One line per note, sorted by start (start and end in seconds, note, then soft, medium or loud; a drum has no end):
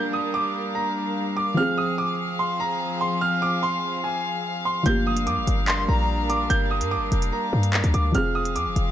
0.00 1.52 F3 medium
0.00 1.54 G3 medium
0.00 1.53 A#3 medium
0.00 1.54 D4 medium
0.00 1.55 G4 medium
0.00 1.54 A#4 medium
0.00 8.11 F5 medium
0.00 0.11 G6 medium
0.13 0.32 D#6 medium
0.34 0.72 D6 medium
0.75 1.33 A#5 medium
1.37 1.55 D6 medium
1.54 4.80 F3 medium
1.54 4.83 F3 medium
1.54 4.83 C4 medium
1.54 4.82 C4 medium
1.54 4.83 G#4 medium
1.54 1.76 F6 medium
1.60 4.83 G#4 medium
1.78 1.96 D#6 medium
1.98 2.37 D6 medium
2.39 2.58 C6 medium
2.60 2.98 A#5 medium
3.01 3.20 C6 medium
3.21 3.40 F6 medium
3.42 3.61 D6 medium
3.63 4.01 C6 medium
4.04 4.62 G#5 medium
4.65 4.84 C6 medium
4.83 5.28 G1 loud
4.83 8.09 F3 medium
4.83 8.11 G3 medium
4.83 8.11 A#3 medium
4.83 8.11 D4 medium
4.83 8.11 A#4 medium
4.83 5.05 G6 medium
4.83 closed hi-hat medium
4.89 8.12 G4 medium
5.07 5.25 D#6 medium
5.17 closed hi-hat loud
5.27 5.39 G2 loud
5.27 5.65 D6 medium
5.27 closed hi-hat medium
5.37 5.47 G1 loud
5.47 5.87 G1 loud
5.47 closed hi-hat medium
5.68 5.88 C6 medium
5.68 5.87 C6 medium
5.68 clap loud
5.68 closed hi-hat medium
5.88 6.48 A#1 loud
5.88 6.46 A#5 medium
5.88 6.27 A#5 medium
6.30 6.48 D6 medium
6.30 closed hi-hat medium
6.50 6.83 G1 loud
6.50 6.69 G6 loud
6.50 closed hi-hat medium
6.71 6.89 D#6 medium
6.81 6.98 G2 loud
6.81 closed hi-hat loud
6.91 7.30 D6 medium
6.96 7.11 G1 loud
7.12 7.32 F1 loud
7.12 closed hi-hat medium
7.22 closed hi-hat medium
7.32 7.90 A#5 medium
7.53 7.82 G2 loud
7.63 closed hi-hat medium
7.74 clap loud
7.84 7.93 D2 loud
7.84 closed hi-hat medium
7.94 8.14 D2 loud
7.94 8.13 D6 medium
7.94 closed hi-hat medium
8.12 8.57 F1 loud
8.12 8.91 F3 medium
8.12 8.91 C4 medium
8.12 8.91 G#4 medium
8.12 8.91 F5 medium
8.12 8.33 F6 medium
8.12 closed hi-hat medium
8.17 8.91 G#4 medium
8.35 8.54 D#6 medium
8.45 closed hi-hat loud
8.56 8.67 F2 loud
8.56 8.91 D6 medium
8.56 closed hi-hat medium
8.66 8.76 F1 loud
8.76 8.91 F1 loud
8.76 closed hi-hat medium